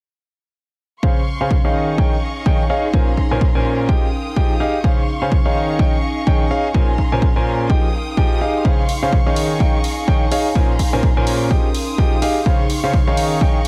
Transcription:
1.03 grand piano C#3 C#4 G#4 C5 F5, violin section F5 C6 C#6, kick
1.36 ambient pad F5 G#5
1.41 grand piano C#3 C#4 G#4 C5 F5
1.51 kick
1.65 grand piano D#3 D#4 G#4 C#5 F5
1.74 ambient pad D#4, violin section G#4 D#5 F5 C#6
1.98 grand piano D#3 D#4 G#4 C#5 G5, kick
2.46 grand piano D#3 D#4 G#4 C#5 G5, kick
2.70 grand piano D#4 G#4 C#5 F5
2.93 grand piano A#2 C#4 A#4 C5 G#5, violin section C#4 A#5 C6, kick
3.17 kick
3.31 grand piano A#2 C#4 A#4 C5 G#5
3.41 kick
3.55 grand piano A#2 C#4 A#4 C5 G#5
3.89 grand piano F3 D#4 G4 G#4 G5, ambient pad D#4, violin section F5 G5 D#6, kick
4.04 ambient pad F5
4.36 grand piano F3 D#4 G4 G#4 G5, kick
4.60 grand piano D#4 G4 G#4 F5
4.84 grand piano C#3 C#4 G#4 C5 F5, violin section C6 C#6, kick
5.18 ambient pad G#5
5.22 grand piano C#3 C#4 G#4 C5 F5
5.32 kick
5.46 grand piano D#3 D#4 G#4 C#5 F5
5.55 ambient pad D#4, violin section G#4 D#5
5.79 grand piano D#3 D#4 G#4 C#5 G5, kick
6.27 grand piano D#3 D#4 G#4 C#5 G5, kick
6.51 grand piano D#4 G#4 C#5 F5
6.74 grand piano A#2 C#4 A#4 C5 G#5, violin section C#4 A#5 C6, kick
6.98 kick
7.12 grand piano A#2 C#4 A#4 C5 G#5
7.22 kick
7.36 grand piano A#2 C#4 A#4 C5 G#5
7.70 grand piano F3 D#4 G4 G#4 G5, ambient pad D#4, violin section F5 G5 D#6, kick
7.89 ambient pad F5
8.17 grand piano F3 D#4 G4 G#4 G5, kick
8.41 grand piano D#4 G4 G#4 F5
8.65 grand piano C#3 C#4 G#4 C5 F5, violin section C6 C#6, kick
8.89 open hi-hat
8.98 ambient pad G#5
9.03 grand piano C#3 C#4 G#4 C5 F5
9.12 kick
9.26 grand piano D#3 D#4 G#4 C#5 F5
9.36 ambient pad D#4, violin section G#4 D#5, open hi-hat
9.60 grand piano D#3 D#4 G#4 C#5 G5, kick
9.84 open hi-hat
10.08 grand piano D#3 D#4 G#4 C#5 G5, kick
10.32 grand piano D#4 G#4 C#5 F5, open hi-hat
10.55 grand piano A#2 C#4 A#4 C5 G#5, violin section C#4 A#5 C6, kick
10.79 kick, open hi-hat
10.93 grand piano A#2 C#4 A#4 C5 G#5
11.03 kick
11.17 grand piano A#2 C#4 A#4 C5 G#5
11.27 open hi-hat
11.51 grand piano F3 D#4 G4 G#4 G5, ambient pad D#4, violin section F5 G5 D#6, kick
11.74 open hi-hat
11.94 grand piano F3 D#4 G4 G#4 G5, ambient pad F5, kick
12.22 grand piano D#4 G4 G#4 F5, open hi-hat
12.46 grand piano C#3 C#4 G#4 C5 F5, violin section C6 C#6, kick
12.70 open hi-hat
12.79 ambient pad G#5
12.84 grand piano C#3 C#4 G#4 C5 F5
12.94 kick
13.07 grand piano D#3 D#4 G#4 C#5 F5
13.17 ambient pad D#4, violin section G#4 D#5, open hi-hat
13.41 grand piano D#3 D#4 G#4 C#5 G5, kick

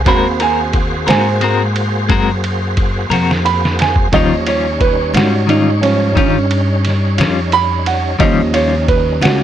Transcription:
0.04 upright bass D#2, clean electric guitar G#3 C4 F#4, tonewheel organ A#3 F#4 G#4 C5, upright piano A#3 C4 F#4 B5, kick, ride
0.08 clean electric guitar A#4
0.40 clean electric guitar C4 F#4 A#4, upright piano G#5, ride
0.73 kick, ride
1.07 upright bass G#2, clean electric guitar C4 F#4 A#4, upright piano C5 G#5, snare, ride
1.41 clean electric guitar G#3 C4 F#4 A#4, ride
1.76 ride
2.09 upright bass F#2, clean electric guitar G#3 C4 F#4 A#4, kick, ride
2.44 ride
2.77 kick, ride
3.10 upright bass F2, clean electric guitar C4 F#4 A#4, high tom, ride
3.31 snare
3.45 upright piano B5, ride
3.65 snare
3.79 upright piano G#5, snare, ride
3.96 kick
4.12 upright bass D#2, clean electric guitar D#3 G3 C#4 F4, upright piano F3 G3 C#4 D#5, tonewheel organ G3 C#4 D#4 C#5, kick, ride
4.47 clean electric guitar G3 C#4 F4, upright piano C#5, ride
4.81 upright piano B4, kick, ride
5.13 upright bass G#2, clean electric guitar G3 C#4 F4, upright piano F#4, snare, ride
5.47 clean electric guitar D#3 G3 C#4 F4, upright piano D#4, ride
5.81 upright piano F3 G3 C#4, ride
6.15 upright bass G2, clean electric guitar D#3 G3 C#4 F4, upright piano C#4, kick, ride
6.51 ride
6.85 snare, ride
7.18 upright bass F2, clean electric guitar G3 C#4 F4, snare, ride
7.52 upright piano B5, ride
7.86 upright piano F#5, ride
8.19 upright bass D#2, clean electric guitar D#3 G3 C#4 F4, upright piano F3 G3 C#4 D#5, tonewheel organ G3 C#4 D#4, kick, ride
8.54 clean electric guitar G3 C#4 F4, upright piano C#5, ride
8.88 upright piano B4, kick, ride
9.21 upright bass C#2, clean electric guitar G3 C#4 F4, upright piano F#4, snare, ride

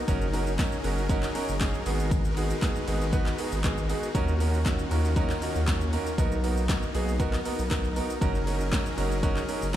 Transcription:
Already playing: supersaw synth D#4
0.08 sub bass F#1, supersaw synth F#3 C#4 G#4 A#4, grand piano C#4 D#4 F#4 A#4, kick, closed hi-hat, tambourine, shaker
0.21 shaker
0.33 grand piano C#4 D#4 F#4 A#4, open hi-hat, tambourine, shaker
0.47 tambourine, shaker
0.59 grand piano C#4 D#4 F#4 A#4, kick, snare, clap, closed hi-hat, tambourine, shaker
0.72 shaker
0.84 sub bass F#1, grand piano C#4 D#4 F#4 A#4, open hi-hat, tambourine, shaker
0.98 shaker
1.09 grand piano C#4 D#4 F#4 A#4, kick, closed hi-hat, tambourine, shaker
1.23 clap, tambourine, shaker
1.35 grand piano C#4 D#4 F#4 A#4, open hi-hat, shaker
1.49 sub bass F#1, tambourine, shaker
1.60 grand piano C#4 D#4 F#4 G#4, kick, snare, clap, closed hi-hat, tambourine, shaker
1.74 shaker
1.86 sub bass G#1, supersaw synth G#3 D#4 F#4 B4, grand piano B3 D#4 F#4 G#4, open hi-hat, tambourine, shaker
2.00 shaker
2.11 kick, closed hi-hat, tambourine, shaker
2.25 shaker
2.37 grand piano B3 D#4 F#4 G#4, open hi-hat, tambourine, shaker
2.50 tambourine, shaker
2.62 grand piano B3 D#4 F#4 G#4, kick, snare, clap, closed hi-hat, tambourine, shaker
2.76 shaker
2.87 sub bass G#1, grand piano B3 D#4 F#4 G#4, open hi-hat, tambourine, shaker
3.01 tambourine, shaker
3.13 grand piano B3 D#4 F#4 B4, kick, closed hi-hat, tambourine, shaker
3.26 clap, tambourine, shaker
3.38 grand piano B3 D#4 F#4 G#4 A#5, open hi-hat, shaker
3.52 sub bass G#1, tambourine, shaker
3.64 grand piano B3 D#4 F#4 G#4 F#5, kick, snare, clap, closed hi-hat, tambourine, shaker
3.78 shaker
3.89 grand piano B3 D#4 F#4 G#4, open hi-hat, tambourine, shaker
4.03 tambourine, shaker
4.15 sub bass D#2, supersaw synth D#3 A#3 C#4 F4, grand piano C#4 D#4 F#4 A#4, kick, closed hi-hat, tambourine, shaker
4.28 shaker
4.40 grand piano C#4 D#4 F#4 A#4, open hi-hat, tambourine, shaker
4.54 shaker
4.65 grand piano C#4 D#4 F#4 A#4, kick, snare, clap, closed hi-hat, tambourine, shaker
4.79 shaker
4.91 sub bass D#2, grand piano C#4 D#4 F#4 A#4, open hi-hat, tambourine, shaker
5.05 tambourine, shaker
5.16 grand piano C#4 D#4 F#4 A#4, kick, closed hi-hat, tambourine, shaker
5.30 clap, tambourine, shaker
5.42 grand piano C#4 D#4 F#4 A#4, open hi-hat, shaker
5.55 sub bass D#2, tambourine, shaker
5.67 grand piano C#4 D#4 F#4 A#4, kick, snare, clap, closed hi-hat, tambourine, shaker
5.81 shaker
5.93 grand piano C#4 D#4 F#4 A#4, open hi-hat, tambourine, shaker
6.06 tambourine, shaker
6.18 sub bass B1, grand piano B3 D#4 F#4 A#4, supersaw synth B3 D#4, kick, closed hi-hat, tambourine, shaker
6.32 shaker
6.43 grand piano B3 D#4 F#4 A#4, open hi-hat, tambourine, shaker
6.57 shaker
6.69 grand piano B3 D#4 F#4 A#4, kick, snare, clap, closed hi-hat, tambourine, shaker
6.83 shaker
6.94 sub bass B1, grand piano B3 D#4 F#4 G#4, open hi-hat, tambourine, shaker
7.08 tambourine, shaker
7.20 grand piano B3 D#4 F#4 A#4, kick, closed hi-hat, tambourine, shaker
7.33 clap, tambourine, shaker
7.45 grand piano B3 D#4 F#4 A#4, open hi-hat, shaker
7.59 sub bass B1, tambourine, shaker
7.70 grand piano B3 D#4 F#4 A#4, kick, snare, clap, closed hi-hat, tambourine, shaker
7.84 shaker
7.96 grand piano B3 D#4 F#4 A#4, open hi-hat, tambourine, shaker
8.10 tambourine, shaker
8.21 sub bass F#1, supersaw synth F#3 C#4 G#4 A#4, grand piano C#4 D#4 F#4 A#4, kick, closed hi-hat, tambourine, shaker
8.35 shaker
8.47 grand piano C#4 D#4 F#4 A#4, open hi-hat, tambourine, shaker
8.61 shaker
8.72 grand piano C#4 D#4 F#4 A#4, kick, snare, clap, closed hi-hat, tambourine, shaker
8.86 shaker
8.98 sub bass F#1, grand piano C#4 D#4 F#4 A#4, open hi-hat, tambourine, shaker
9.11 tambourine, shaker
9.23 grand piano C#4 D#4 F#4 A#4, kick, closed hi-hat, tambourine, shaker
9.37 clap, tambourine, shaker
9.48 grand piano C#4 D#4 F#4 A#4, open hi-hat, shaker
9.62 sub bass F#1, tambourine, shaker

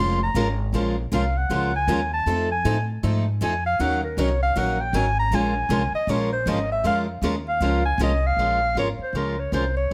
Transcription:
Already playing: upright bass F1, clarinet C6
0.00 steel-string acoustic guitar F3 G#3 C#4 F4 A#4
0.23 clarinet A#5
0.34 upright bass G#1, steel-string acoustic guitar F3 G#3 C#4 F4 A#4
0.73 upright bass A#1, steel-string acoustic guitar F3 G#3 C#4 F4 A#4
1.12 upright bass C2, steel-string acoustic guitar F3 G#3 C#4 F4 A#4, clarinet F5
1.37 clarinet F#5
1.49 upright bass C#2, steel-string acoustic guitar F3 G#3 C#4 F4 A#4
1.76 clarinet G#5
1.87 upright bass D#2, steel-string acoustic guitar F3 G#3 C#4 F4 A#4
2.13 clarinet A5
2.26 upright bass F2, steel-string acoustic guitar F3 A3 C4 D#4 A4
2.51 clarinet G#5
2.64 upright bass A2, steel-string acoustic guitar F3 A3 C4 D#4 A4
3.03 upright bass G#2, steel-string acoustic guitar F3 A3 C4 D#4 A4
3.41 upright bass F2, steel-string acoustic guitar F3 A3 C4 D#4 A4, clarinet G#5
3.66 clarinet F5
3.79 upright bass D#2, steel-string acoustic guitar D#3 F#3 C#4 D#4 A#4, clarinet F#5
4.04 clarinet A#4
4.17 upright bass C2, steel-string acoustic guitar D#3 F#3 C#4 D#4 A#4, clarinet C#5
4.42 clarinet F5
4.56 upright bass A#1, steel-string acoustic guitar D#3 F#3 C#4 D#4 A#4, clarinet F#5
4.81 clarinet G5
4.93 upright bass G#1, steel-string acoustic guitar D#3 F#3 C#4 D#4 A#4, clarinet G#5
5.19 clarinet A#5
5.31 upright bass A#1, steel-string acoustic guitar F3 G#3 C#4 F4 A#4, clarinet G#5
5.69 upright bass C2, steel-string acoustic guitar F3 G#3 C#4 F4 A#4
5.92 clarinet D#5, muted upright bass stroke
6.07 upright bass A#1, steel-string acoustic guitar F3 G#3 C#4 F4 A#4, clarinet C#5
6.33 clarinet C5
6.46 upright bass G#1, steel-string acoustic guitar F3 G#3 C#4 F4 A#4, clarinet D#5
6.72 clarinet E5
6.84 upright bass F2, steel-string acoustic guitar F3 G#3 C#4 F4 A#4, clarinet F5
7.22 upright bass D#2, steel-string acoustic guitar F3 G#3 C#4 F4 A#4
7.48 clarinet F5
7.60 upright bass C#2, steel-string acoustic guitar F3 G#3 C#4 F4 A#4
7.85 clarinet G#5
7.98 upright bass C2, steel-string acoustic guitar F3 G#3 C#4 F4 A#4
8.03 clarinet D#5
8.27 clarinet F5
8.36 upright bass A#1, steel-string acoustic guitar F3 G#3 C#4 F4 A#4
8.75 upright bass G#1, steel-string acoustic guitar F3 G#3 C#4 F4 A#4
8.79 clarinet C#5
8.99 muted upright bass stroke
9.03 clarinet C5
9.13 upright bass C#2, steel-string acoustic guitar F3 G#3 C#4 F4 A#4, clarinet A#4
9.40 clarinet C#5
9.52 upright bass C2, steel-string acoustic guitar F3 G#3 C#4 F4 A#4, clarinet C5
9.77 clarinet C#5

